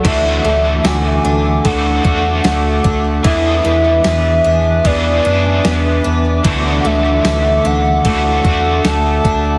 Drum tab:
CC |x-------|--------|--------|
RD |x-x-x-x-|x-x-x-x-|x-x-x-x-|
TB |--x---x-|--x---x-|--x---x-|
SD |--o---o-|--o---o-|--o---o-|
BD |o---oo-o|o---o---|o---oo-o|